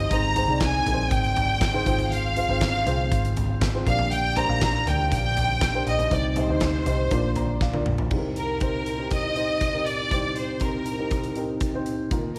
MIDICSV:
0, 0, Header, 1, 5, 480
1, 0, Start_track
1, 0, Key_signature, -3, "minor"
1, 0, Tempo, 500000
1, 108, Time_signature, 4, 2, 24, 8
1, 11892, End_track
2, 0, Start_track
2, 0, Title_t, "Violin section"
2, 0, Program_c, 0, 48
2, 111, Note_on_c, 0, 82, 100
2, 590, Note_off_c, 0, 82, 0
2, 592, Note_on_c, 0, 80, 97
2, 1037, Note_off_c, 0, 80, 0
2, 1066, Note_on_c, 0, 79, 101
2, 2027, Note_off_c, 0, 79, 0
2, 2032, Note_on_c, 0, 77, 99
2, 3469, Note_off_c, 0, 77, 0
2, 3716, Note_on_c, 0, 77, 93
2, 3935, Note_off_c, 0, 77, 0
2, 3951, Note_on_c, 0, 79, 102
2, 4189, Note_off_c, 0, 79, 0
2, 4195, Note_on_c, 0, 82, 105
2, 4671, Note_off_c, 0, 82, 0
2, 4681, Note_on_c, 0, 79, 90
2, 4902, Note_off_c, 0, 79, 0
2, 4913, Note_on_c, 0, 79, 102
2, 5592, Note_off_c, 0, 79, 0
2, 5644, Note_on_c, 0, 75, 84
2, 5875, Note_off_c, 0, 75, 0
2, 5882, Note_on_c, 0, 74, 83
2, 6030, Note_off_c, 0, 74, 0
2, 6042, Note_on_c, 0, 74, 54
2, 6108, Note_off_c, 0, 74, 0
2, 6120, Note_on_c, 0, 72, 86
2, 7553, Note_off_c, 0, 72, 0
2, 8042, Note_on_c, 0, 70, 70
2, 8258, Note_off_c, 0, 70, 0
2, 8277, Note_on_c, 0, 70, 75
2, 8718, Note_off_c, 0, 70, 0
2, 8759, Note_on_c, 0, 75, 92
2, 9472, Note_on_c, 0, 74, 91
2, 9473, Note_off_c, 0, 75, 0
2, 9949, Note_off_c, 0, 74, 0
2, 9958, Note_on_c, 0, 72, 70
2, 10176, Note_off_c, 0, 72, 0
2, 10194, Note_on_c, 0, 70, 67
2, 10910, Note_off_c, 0, 70, 0
2, 11892, End_track
3, 0, Start_track
3, 0, Title_t, "Upright piano"
3, 0, Program_c, 1, 0
3, 0, Control_c, 1, 64, 127
3, 0, Note_on_c, 1, 48, 61
3, 0, Note_on_c, 1, 60, 65
3, 0, Note_on_c, 1, 63, 58
3, 0, Note_on_c, 1, 67, 61
3, 0, Note_on_c, 1, 72, 70
3, 0, Note_on_c, 1, 75, 74
3, 104, Note_off_c, 1, 60, 0
3, 104, Note_on_c, 1, 60, 68
3, 106, Note_off_c, 1, 63, 0
3, 106, Note_on_c, 1, 63, 63
3, 112, Note_on_c, 1, 44, 60
3, 115, Note_on_c, 1, 68, 61
3, 118, Note_off_c, 1, 72, 0
3, 118, Note_on_c, 1, 72, 74
3, 119, Note_off_c, 1, 75, 0
3, 119, Control_c, 1, 64, 0
3, 122, Note_off_c, 1, 48, 0
3, 127, Note_off_c, 1, 67, 0
3, 260, Control_c, 1, 64, 127
3, 307, Note_off_c, 1, 60, 0
3, 308, Note_off_c, 1, 63, 0
3, 313, Note_off_c, 1, 68, 0
3, 314, Note_off_c, 1, 72, 0
3, 338, Note_on_c, 1, 60, 63
3, 344, Note_on_c, 1, 63, 61
3, 348, Note_on_c, 1, 68, 58
3, 356, Note_on_c, 1, 72, 72
3, 444, Note_off_c, 1, 60, 0
3, 447, Note_off_c, 1, 63, 0
3, 449, Note_off_c, 1, 68, 0
3, 453, Note_off_c, 1, 72, 0
3, 460, Note_on_c, 1, 60, 65
3, 464, Note_on_c, 1, 63, 61
3, 470, Note_on_c, 1, 68, 64
3, 476, Note_on_c, 1, 74, 73
3, 766, Note_off_c, 1, 60, 0
3, 768, Note_off_c, 1, 63, 0
3, 771, Note_off_c, 1, 68, 0
3, 774, Note_off_c, 1, 74, 0
3, 792, Note_off_c, 1, 44, 0
3, 820, Note_on_c, 1, 60, 65
3, 823, Note_on_c, 1, 63, 60
3, 830, Note_on_c, 1, 68, 63
3, 837, Note_on_c, 1, 70, 57
3, 890, Note_off_c, 1, 70, 0
3, 894, Note_on_c, 1, 72, 72
3, 1528, Note_off_c, 1, 60, 0
3, 1529, Note_off_c, 1, 63, 0
3, 1533, Note_off_c, 1, 68, 0
3, 1565, Note_off_c, 1, 72, 0
3, 1660, Note_on_c, 1, 60, 81
3, 1663, Note_on_c, 1, 63, 73
3, 1670, Note_on_c, 1, 68, 77
3, 1676, Note_on_c, 1, 72, 91
3, 1758, Note_off_c, 1, 60, 0
3, 1767, Note_off_c, 1, 68, 0
3, 1773, Note_on_c, 1, 60, 84
3, 1777, Note_off_c, 1, 72, 0
3, 1780, Note_on_c, 1, 65, 77
3, 1781, Note_on_c, 1, 44, 73
3, 1781, Note_on_c, 1, 68, 81
3, 1785, Note_off_c, 1, 63, 0
3, 1792, Note_on_c, 1, 72, 98
3, 1802, Control_c, 1, 64, 0
3, 1948, Control_c, 1, 64, 127
3, 2182, Note_off_c, 1, 60, 0
3, 2186, Note_off_c, 1, 65, 0
3, 2187, Note_off_c, 1, 68, 0
3, 2192, Note_off_c, 1, 72, 0
3, 2260, Note_on_c, 1, 60, 68
3, 2266, Note_on_c, 1, 65, 64
3, 2270, Note_on_c, 1, 68, 66
3, 2276, Note_on_c, 1, 72, 77
3, 2363, Note_off_c, 1, 60, 0
3, 2367, Note_off_c, 1, 65, 0
3, 2369, Note_off_c, 1, 68, 0
3, 2372, Note_off_c, 1, 72, 0
3, 2378, Note_on_c, 1, 60, 72
3, 2384, Note_on_c, 1, 65, 65
3, 2390, Note_on_c, 1, 68, 64
3, 2397, Note_on_c, 1, 72, 78
3, 2466, Note_off_c, 1, 44, 0
3, 2684, Note_off_c, 1, 60, 0
3, 2687, Note_off_c, 1, 65, 0
3, 2691, Note_off_c, 1, 68, 0
3, 2694, Note_off_c, 1, 72, 0
3, 2740, Note_on_c, 1, 60, 84
3, 2743, Note_on_c, 1, 65, 69
3, 2751, Note_on_c, 1, 68, 74
3, 2753, Note_on_c, 1, 72, 92
3, 3447, Note_off_c, 1, 60, 0
3, 3449, Note_off_c, 1, 65, 0
3, 3453, Note_off_c, 1, 68, 0
3, 3454, Note_off_c, 1, 72, 0
3, 3584, Note_on_c, 1, 60, 67
3, 3590, Note_on_c, 1, 65, 62
3, 3596, Note_on_c, 1, 68, 64
3, 3599, Note_on_c, 1, 72, 71
3, 3703, Note_on_c, 1, 62, 71
3, 3706, Note_off_c, 1, 60, 0
3, 3709, Note_off_c, 1, 65, 0
3, 3709, Note_on_c, 1, 67, 66
3, 3712, Note_off_c, 1, 68, 0
3, 3713, Note_off_c, 1, 72, 0
3, 3713, Note_on_c, 1, 46, 61
3, 3715, Note_on_c, 1, 70, 69
3, 3720, Control_c, 1, 64, 0
3, 3720, Note_on_c, 1, 74, 84
3, 3878, Control_c, 1, 64, 127
3, 4107, Note_off_c, 1, 62, 0
3, 4110, Note_off_c, 1, 67, 0
3, 4113, Note_off_c, 1, 70, 0
3, 4116, Note_off_c, 1, 74, 0
3, 4181, Note_on_c, 1, 62, 71
3, 4188, Note_on_c, 1, 67, 67
3, 4192, Note_on_c, 1, 70, 63
3, 4194, Note_on_c, 1, 72, 78
3, 4285, Note_off_c, 1, 62, 0
3, 4288, Note_off_c, 1, 67, 0
3, 4290, Note_off_c, 1, 70, 0
3, 4291, Note_off_c, 1, 72, 0
3, 4299, Note_on_c, 1, 62, 73
3, 4306, Note_on_c, 1, 67, 63
3, 4309, Note_on_c, 1, 70, 68
3, 4315, Note_on_c, 1, 77, 78
3, 4391, Note_off_c, 1, 46, 0
3, 4605, Note_off_c, 1, 62, 0
3, 4608, Note_off_c, 1, 67, 0
3, 4610, Note_off_c, 1, 70, 0
3, 4613, Note_off_c, 1, 77, 0
3, 4664, Note_on_c, 1, 62, 70
3, 4670, Note_on_c, 1, 67, 62
3, 4672, Note_on_c, 1, 70, 63
3, 4679, Note_on_c, 1, 74, 75
3, 5369, Note_off_c, 1, 62, 0
3, 5372, Note_off_c, 1, 67, 0
3, 5373, Note_off_c, 1, 70, 0
3, 5376, Note_off_c, 1, 74, 0
3, 5503, Note_on_c, 1, 62, 64
3, 5510, Note_on_c, 1, 67, 62
3, 5515, Note_on_c, 1, 70, 63
3, 5521, Note_on_c, 1, 72, 77
3, 5806, Note_off_c, 1, 62, 0
3, 5810, Note_off_c, 1, 67, 0
3, 5812, Note_off_c, 1, 70, 0
3, 5816, Note_off_c, 1, 72, 0
3, 5860, Note_on_c, 1, 63, 73
3, 5866, Note_on_c, 1, 67, 60
3, 5867, Note_on_c, 1, 48, 59
3, 5869, Note_on_c, 1, 72, 64
3, 5877, Note_on_c, 1, 75, 75
3, 5881, Control_c, 1, 64, 0
3, 6064, Note_off_c, 1, 63, 0
3, 6065, Control_c, 1, 64, 127
3, 6067, Note_off_c, 1, 67, 0
3, 6069, Note_off_c, 1, 72, 0
3, 6073, Note_off_c, 1, 75, 0
3, 6106, Note_on_c, 1, 63, 70
3, 6113, Note_on_c, 1, 67, 62
3, 6119, Note_on_c, 1, 72, 60
3, 6123, Note_on_c, 1, 75, 71
3, 6207, Note_off_c, 1, 63, 0
3, 6211, Note_off_c, 1, 67, 0
3, 6213, Note_off_c, 1, 72, 0
3, 6216, Note_off_c, 1, 75, 0
3, 6226, Note_on_c, 1, 63, 69
3, 6230, Note_on_c, 1, 67, 58
3, 6240, Note_on_c, 1, 72, 64
3, 6240, Note_on_c, 1, 75, 74
3, 6528, Note_off_c, 1, 63, 0
3, 6530, Note_off_c, 1, 67, 0
3, 6535, Note_off_c, 1, 72, 0
3, 6535, Note_off_c, 1, 75, 0
3, 6548, Note_off_c, 1, 48, 0
3, 6581, Note_on_c, 1, 63, 64
3, 6583, Note_on_c, 1, 67, 59
3, 6586, Note_on_c, 1, 72, 59
3, 6594, Note_on_c, 1, 75, 72
3, 6821, Note_on_c, 1, 62, 87
3, 6824, Note_off_c, 1, 63, 0
3, 6825, Note_off_c, 1, 67, 0
3, 6825, Note_on_c, 1, 65, 80
3, 6826, Note_off_c, 1, 72, 0
3, 6830, Note_off_c, 1, 75, 0
3, 6830, Note_on_c, 1, 70, 76
3, 6831, Note_on_c, 1, 46, 69
3, 6837, Control_c, 1, 64, 0
3, 6839, Note_on_c, 1, 74, 97
3, 7019, Control_c, 1, 64, 127
3, 7068, Note_on_c, 1, 82, 63
3, 7290, Note_off_c, 1, 82, 0
3, 7314, Note_on_c, 1, 77, 64
3, 7326, Note_off_c, 1, 62, 0
3, 7328, Note_off_c, 1, 65, 0
3, 7331, Note_off_c, 1, 70, 0
3, 7335, Note_off_c, 1, 74, 0
3, 7417, Note_on_c, 1, 62, 77
3, 7422, Note_on_c, 1, 65, 72
3, 7427, Note_on_c, 1, 70, 73
3, 7437, Note_on_c, 1, 74, 80
3, 7510, Note_off_c, 1, 46, 0
3, 7723, Note_off_c, 1, 62, 0
3, 7726, Note_off_c, 1, 65, 0
3, 7728, Note_off_c, 1, 70, 0
3, 7733, Note_off_c, 1, 74, 0
3, 7757, Note_off_c, 1, 77, 0
3, 7781, Note_on_c, 1, 60, 72
3, 7785, Note_on_c, 1, 63, 64
3, 7788, Note_on_c, 1, 48, 62
3, 7789, Note_on_c, 1, 36, 62
3, 7790, Note_on_c, 1, 67, 62
3, 7794, Note_on_c, 1, 68, 61
3, 7798, Control_c, 1, 64, 0
3, 7848, Note_off_c, 1, 68, 0
3, 7851, Note_on_c, 1, 70, 77
3, 7944, Control_c, 1, 64, 127
3, 8186, Note_off_c, 1, 60, 0
3, 8188, Note_off_c, 1, 63, 0
3, 8190, Note_off_c, 1, 67, 0
3, 8221, Note_off_c, 1, 70, 0
3, 8257, Note_on_c, 1, 60, 57
3, 8262, Note_on_c, 1, 63, 55
3, 8269, Note_on_c, 1, 67, 53
3, 8275, Note_on_c, 1, 72, 65
3, 8563, Note_off_c, 1, 60, 0
3, 8566, Note_off_c, 1, 63, 0
3, 8569, Note_off_c, 1, 67, 0
3, 8573, Note_off_c, 1, 72, 0
3, 8619, Note_on_c, 1, 60, 60
3, 8627, Note_on_c, 1, 63, 56
3, 8635, Note_on_c, 1, 67, 58
3, 8636, Note_on_c, 1, 70, 65
3, 8925, Note_off_c, 1, 60, 0
3, 8928, Note_off_c, 1, 63, 0
3, 8932, Note_off_c, 1, 67, 0
3, 8933, Note_off_c, 1, 70, 0
3, 8982, Note_on_c, 1, 60, 57
3, 8987, Note_on_c, 1, 63, 53
3, 8993, Note_on_c, 1, 67, 53
3, 8998, Note_on_c, 1, 72, 63
3, 9286, Note_off_c, 1, 60, 0
3, 9289, Note_off_c, 1, 63, 0
3, 9291, Note_off_c, 1, 67, 0
3, 9294, Note_off_c, 1, 72, 0
3, 9337, Note_on_c, 1, 60, 59
3, 9340, Note_on_c, 1, 63, 55
3, 9349, Note_on_c, 1, 67, 51
3, 9352, Note_on_c, 1, 70, 63
3, 9644, Note_off_c, 1, 60, 0
3, 9645, Note_off_c, 1, 63, 0
3, 9649, Note_off_c, 1, 67, 0
3, 9651, Note_off_c, 1, 70, 0
3, 9669, Note_off_c, 1, 48, 0
3, 9670, Note_off_c, 1, 36, 0
3, 9700, Note_on_c, 1, 60, 60
3, 9706, Note_on_c, 1, 63, 56
3, 9711, Note_on_c, 1, 36, 52
3, 9711, Note_on_c, 1, 48, 53
3, 9712, Note_on_c, 1, 67, 57
3, 9720, Note_on_c, 1, 72, 65
3, 10106, Note_off_c, 1, 60, 0
3, 10108, Note_off_c, 1, 63, 0
3, 10111, Note_off_c, 1, 67, 0
3, 10115, Note_off_c, 1, 72, 0
3, 10178, Note_on_c, 1, 60, 62
3, 10182, Note_on_c, 1, 63, 53
3, 10192, Note_on_c, 1, 67, 53
3, 10195, Note_on_c, 1, 70, 63
3, 10484, Note_off_c, 1, 60, 0
3, 10486, Note_off_c, 1, 63, 0
3, 10491, Note_off_c, 1, 67, 0
3, 10493, Note_off_c, 1, 70, 0
3, 10544, Note_on_c, 1, 60, 64
3, 10547, Note_on_c, 1, 63, 57
3, 10555, Note_on_c, 1, 67, 53
3, 10557, Note_on_c, 1, 70, 66
3, 10847, Note_off_c, 1, 60, 0
3, 10849, Note_off_c, 1, 63, 0
3, 10853, Note_off_c, 1, 67, 0
3, 10853, Note_off_c, 1, 70, 0
3, 10904, Note_on_c, 1, 60, 70
3, 10910, Note_on_c, 1, 63, 68
3, 10917, Note_on_c, 1, 67, 65
3, 10921, Note_on_c, 1, 70, 77
3, 11207, Note_off_c, 1, 60, 0
3, 11210, Note_off_c, 1, 63, 0
3, 11214, Note_off_c, 1, 67, 0
3, 11215, Note_off_c, 1, 70, 0
3, 11267, Note_on_c, 1, 60, 72
3, 11272, Note_on_c, 1, 63, 64
3, 11278, Note_on_c, 1, 67, 61
3, 11283, Note_on_c, 1, 72, 79
3, 11569, Note_off_c, 1, 60, 0
3, 11571, Note_off_c, 1, 63, 0
3, 11574, Note_off_c, 1, 67, 0
3, 11577, Note_off_c, 1, 72, 0
3, 11591, Note_off_c, 1, 36, 0
3, 11591, Note_off_c, 1, 48, 0
3, 11623, Note_on_c, 1, 58, 72
3, 11627, Note_on_c, 1, 63, 67
3, 11629, Note_on_c, 1, 39, 65
3, 11629, Note_on_c, 1, 51, 62
3, 11632, Note_on_c, 1, 65, 71
3, 11638, Note_on_c, 1, 70, 81
3, 11639, Control_c, 1, 64, 0
3, 11835, Control_c, 1, 64, 127
3, 11892, Note_off_c, 1, 39, 0
3, 11892, Note_off_c, 1, 51, 0
3, 11892, Note_off_c, 1, 58, 0
3, 11892, Note_off_c, 1, 63, 0
3, 11892, Note_off_c, 1, 65, 0
3, 11892, Note_off_c, 1, 70, 0
3, 11892, End_track
4, 0, Start_track
4, 0, Title_t, "Fingered electric bass"
4, 0, Program_c, 2, 33
4, 103, Note_on_c, 2, 32, 91
4, 440, Note_off_c, 2, 32, 0
4, 459, Note_on_c, 2, 36, 81
4, 798, Note_off_c, 2, 36, 0
4, 824, Note_on_c, 2, 34, 86
4, 1049, Note_off_c, 2, 34, 0
4, 1068, Note_on_c, 2, 32, 88
4, 1752, Note_off_c, 2, 32, 0
4, 1788, Note_on_c, 2, 32, 89
4, 2349, Note_off_c, 2, 32, 0
4, 2386, Note_on_c, 2, 32, 77
4, 2722, Note_off_c, 2, 32, 0
4, 2750, Note_on_c, 2, 36, 80
4, 2972, Note_off_c, 2, 36, 0
4, 2993, Note_on_c, 2, 32, 101
4, 3674, Note_off_c, 2, 32, 0
4, 3714, Note_on_c, 2, 34, 96
4, 4272, Note_off_c, 2, 34, 0
4, 4309, Note_on_c, 2, 34, 91
4, 4643, Note_off_c, 2, 34, 0
4, 4668, Note_on_c, 2, 38, 81
4, 4890, Note_off_c, 2, 38, 0
4, 4909, Note_on_c, 2, 34, 95
4, 5592, Note_off_c, 2, 34, 0
4, 5632, Note_on_c, 2, 34, 79
4, 5853, Note_off_c, 2, 34, 0
4, 5869, Note_on_c, 2, 36, 100
4, 6202, Note_off_c, 2, 36, 0
4, 6225, Note_on_c, 2, 38, 80
4, 6560, Note_off_c, 2, 38, 0
4, 6588, Note_on_c, 2, 36, 81
4, 6810, Note_off_c, 2, 36, 0
4, 6828, Note_on_c, 2, 34, 82
4, 7511, Note_off_c, 2, 34, 0
4, 7542, Note_on_c, 2, 34, 75
4, 7767, Note_off_c, 2, 34, 0
4, 11892, End_track
5, 0, Start_track
5, 0, Title_t, "Drums"
5, 104, Note_on_c, 9, 36, 97
5, 105, Note_on_c, 9, 42, 74
5, 200, Note_off_c, 9, 36, 0
5, 201, Note_off_c, 9, 42, 0
5, 345, Note_on_c, 9, 42, 64
5, 346, Note_on_c, 9, 43, 60
5, 441, Note_off_c, 9, 42, 0
5, 442, Note_off_c, 9, 43, 0
5, 578, Note_on_c, 9, 42, 69
5, 583, Note_on_c, 9, 36, 104
5, 583, Note_on_c, 9, 38, 101
5, 674, Note_off_c, 9, 42, 0
5, 679, Note_off_c, 9, 36, 0
5, 679, Note_off_c, 9, 38, 0
5, 830, Note_on_c, 9, 42, 65
5, 830, Note_on_c, 9, 43, 64
5, 926, Note_off_c, 9, 42, 0
5, 926, Note_off_c, 9, 43, 0
5, 1066, Note_on_c, 9, 42, 81
5, 1067, Note_on_c, 9, 36, 100
5, 1162, Note_off_c, 9, 42, 0
5, 1163, Note_off_c, 9, 36, 0
5, 1193, Note_on_c, 9, 42, 43
5, 1289, Note_off_c, 9, 42, 0
5, 1307, Note_on_c, 9, 42, 60
5, 1312, Note_on_c, 9, 43, 66
5, 1403, Note_off_c, 9, 42, 0
5, 1408, Note_off_c, 9, 43, 0
5, 1546, Note_on_c, 9, 36, 102
5, 1547, Note_on_c, 9, 42, 79
5, 1549, Note_on_c, 9, 38, 100
5, 1642, Note_off_c, 9, 36, 0
5, 1643, Note_off_c, 9, 42, 0
5, 1645, Note_off_c, 9, 38, 0
5, 1788, Note_on_c, 9, 36, 99
5, 1794, Note_on_c, 9, 42, 64
5, 1884, Note_off_c, 9, 36, 0
5, 1890, Note_off_c, 9, 42, 0
5, 1906, Note_on_c, 9, 43, 58
5, 1911, Note_on_c, 9, 42, 45
5, 2002, Note_off_c, 9, 43, 0
5, 2007, Note_off_c, 9, 42, 0
5, 2034, Note_on_c, 9, 42, 70
5, 2130, Note_off_c, 9, 42, 0
5, 2270, Note_on_c, 9, 42, 68
5, 2366, Note_off_c, 9, 42, 0
5, 2504, Note_on_c, 9, 42, 65
5, 2508, Note_on_c, 9, 36, 103
5, 2509, Note_on_c, 9, 38, 101
5, 2600, Note_off_c, 9, 42, 0
5, 2604, Note_off_c, 9, 36, 0
5, 2605, Note_off_c, 9, 38, 0
5, 2752, Note_on_c, 9, 42, 64
5, 2752, Note_on_c, 9, 43, 63
5, 2848, Note_off_c, 9, 42, 0
5, 2848, Note_off_c, 9, 43, 0
5, 2991, Note_on_c, 9, 42, 86
5, 2992, Note_on_c, 9, 36, 98
5, 3087, Note_off_c, 9, 42, 0
5, 3088, Note_off_c, 9, 36, 0
5, 3118, Note_on_c, 9, 42, 47
5, 3214, Note_off_c, 9, 42, 0
5, 3231, Note_on_c, 9, 42, 59
5, 3236, Note_on_c, 9, 43, 63
5, 3327, Note_off_c, 9, 42, 0
5, 3332, Note_off_c, 9, 43, 0
5, 3470, Note_on_c, 9, 36, 104
5, 3470, Note_on_c, 9, 42, 83
5, 3472, Note_on_c, 9, 38, 100
5, 3566, Note_off_c, 9, 36, 0
5, 3566, Note_off_c, 9, 42, 0
5, 3568, Note_off_c, 9, 38, 0
5, 3711, Note_on_c, 9, 36, 100
5, 3715, Note_on_c, 9, 42, 63
5, 3807, Note_off_c, 9, 36, 0
5, 3811, Note_off_c, 9, 42, 0
5, 3828, Note_on_c, 9, 43, 61
5, 3924, Note_off_c, 9, 43, 0
5, 3950, Note_on_c, 9, 42, 70
5, 4046, Note_off_c, 9, 42, 0
5, 4189, Note_on_c, 9, 42, 66
5, 4191, Note_on_c, 9, 43, 63
5, 4285, Note_off_c, 9, 42, 0
5, 4287, Note_off_c, 9, 43, 0
5, 4426, Note_on_c, 9, 42, 68
5, 4430, Note_on_c, 9, 36, 105
5, 4432, Note_on_c, 9, 38, 93
5, 4522, Note_off_c, 9, 42, 0
5, 4526, Note_off_c, 9, 36, 0
5, 4528, Note_off_c, 9, 38, 0
5, 4676, Note_on_c, 9, 42, 63
5, 4676, Note_on_c, 9, 43, 67
5, 4772, Note_off_c, 9, 42, 0
5, 4772, Note_off_c, 9, 43, 0
5, 4911, Note_on_c, 9, 42, 81
5, 4912, Note_on_c, 9, 36, 100
5, 5007, Note_off_c, 9, 42, 0
5, 5008, Note_off_c, 9, 36, 0
5, 5152, Note_on_c, 9, 42, 61
5, 5157, Note_on_c, 9, 43, 63
5, 5248, Note_off_c, 9, 42, 0
5, 5253, Note_off_c, 9, 43, 0
5, 5387, Note_on_c, 9, 42, 84
5, 5388, Note_on_c, 9, 36, 112
5, 5390, Note_on_c, 9, 38, 95
5, 5483, Note_off_c, 9, 42, 0
5, 5484, Note_off_c, 9, 36, 0
5, 5486, Note_off_c, 9, 38, 0
5, 5633, Note_on_c, 9, 42, 61
5, 5729, Note_off_c, 9, 42, 0
5, 5750, Note_on_c, 9, 43, 59
5, 5755, Note_on_c, 9, 42, 47
5, 5846, Note_off_c, 9, 43, 0
5, 5851, Note_off_c, 9, 42, 0
5, 5868, Note_on_c, 9, 36, 97
5, 5868, Note_on_c, 9, 42, 74
5, 5964, Note_off_c, 9, 36, 0
5, 5964, Note_off_c, 9, 42, 0
5, 6105, Note_on_c, 9, 42, 68
5, 6107, Note_on_c, 9, 43, 59
5, 6201, Note_off_c, 9, 42, 0
5, 6203, Note_off_c, 9, 43, 0
5, 6339, Note_on_c, 9, 42, 64
5, 6345, Note_on_c, 9, 38, 97
5, 6346, Note_on_c, 9, 36, 97
5, 6435, Note_off_c, 9, 42, 0
5, 6441, Note_off_c, 9, 38, 0
5, 6442, Note_off_c, 9, 36, 0
5, 6587, Note_on_c, 9, 42, 68
5, 6588, Note_on_c, 9, 43, 60
5, 6683, Note_off_c, 9, 42, 0
5, 6684, Note_off_c, 9, 43, 0
5, 6824, Note_on_c, 9, 42, 79
5, 6829, Note_on_c, 9, 36, 96
5, 6920, Note_off_c, 9, 42, 0
5, 6925, Note_off_c, 9, 36, 0
5, 7061, Note_on_c, 9, 42, 59
5, 7066, Note_on_c, 9, 43, 63
5, 7157, Note_off_c, 9, 42, 0
5, 7162, Note_off_c, 9, 43, 0
5, 7304, Note_on_c, 9, 38, 53
5, 7305, Note_on_c, 9, 36, 101
5, 7400, Note_off_c, 9, 38, 0
5, 7401, Note_off_c, 9, 36, 0
5, 7425, Note_on_c, 9, 48, 58
5, 7521, Note_off_c, 9, 48, 0
5, 7544, Note_on_c, 9, 45, 80
5, 7640, Note_off_c, 9, 45, 0
5, 7664, Note_on_c, 9, 43, 80
5, 7760, Note_off_c, 9, 43, 0
5, 7781, Note_on_c, 9, 49, 67
5, 7787, Note_on_c, 9, 36, 87
5, 7877, Note_off_c, 9, 49, 0
5, 7883, Note_off_c, 9, 36, 0
5, 8027, Note_on_c, 9, 42, 58
5, 8123, Note_off_c, 9, 42, 0
5, 8260, Note_on_c, 9, 42, 57
5, 8267, Note_on_c, 9, 36, 93
5, 8356, Note_off_c, 9, 42, 0
5, 8363, Note_off_c, 9, 36, 0
5, 8507, Note_on_c, 9, 42, 55
5, 8603, Note_off_c, 9, 42, 0
5, 8742, Note_on_c, 9, 42, 71
5, 8749, Note_on_c, 9, 36, 90
5, 8838, Note_off_c, 9, 42, 0
5, 8845, Note_off_c, 9, 36, 0
5, 8984, Note_on_c, 9, 42, 49
5, 9080, Note_off_c, 9, 42, 0
5, 9224, Note_on_c, 9, 42, 73
5, 9227, Note_on_c, 9, 36, 88
5, 9320, Note_off_c, 9, 42, 0
5, 9323, Note_off_c, 9, 36, 0
5, 9470, Note_on_c, 9, 42, 53
5, 9566, Note_off_c, 9, 42, 0
5, 9708, Note_on_c, 9, 36, 87
5, 9708, Note_on_c, 9, 42, 62
5, 9804, Note_off_c, 9, 36, 0
5, 9804, Note_off_c, 9, 42, 0
5, 9943, Note_on_c, 9, 42, 56
5, 10039, Note_off_c, 9, 42, 0
5, 10174, Note_on_c, 9, 42, 55
5, 10184, Note_on_c, 9, 36, 84
5, 10270, Note_off_c, 9, 42, 0
5, 10280, Note_off_c, 9, 36, 0
5, 10423, Note_on_c, 9, 42, 59
5, 10519, Note_off_c, 9, 42, 0
5, 10662, Note_on_c, 9, 42, 73
5, 10668, Note_on_c, 9, 36, 86
5, 10758, Note_off_c, 9, 42, 0
5, 10764, Note_off_c, 9, 36, 0
5, 10786, Note_on_c, 9, 42, 42
5, 10882, Note_off_c, 9, 42, 0
5, 10901, Note_on_c, 9, 42, 51
5, 10997, Note_off_c, 9, 42, 0
5, 11140, Note_on_c, 9, 42, 74
5, 11145, Note_on_c, 9, 36, 96
5, 11236, Note_off_c, 9, 42, 0
5, 11241, Note_off_c, 9, 36, 0
5, 11385, Note_on_c, 9, 42, 57
5, 11481, Note_off_c, 9, 42, 0
5, 11626, Note_on_c, 9, 42, 62
5, 11627, Note_on_c, 9, 36, 93
5, 11722, Note_off_c, 9, 42, 0
5, 11723, Note_off_c, 9, 36, 0
5, 11892, End_track
0, 0, End_of_file